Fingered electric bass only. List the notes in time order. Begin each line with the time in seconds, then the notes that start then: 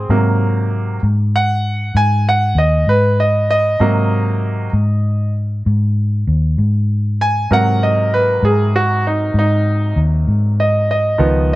0.09 G#2
1.03 G#2
1.95 G#2
2.55 D#2
2.87 G#2
3.80 G#2
4.73 G#2
5.66 G#2
6.27 D#2
6.58 G#2
7.51 G#2
8.43 G#2
9.34 G#2
9.96 D#2
10.28 G#2
11.19 C#2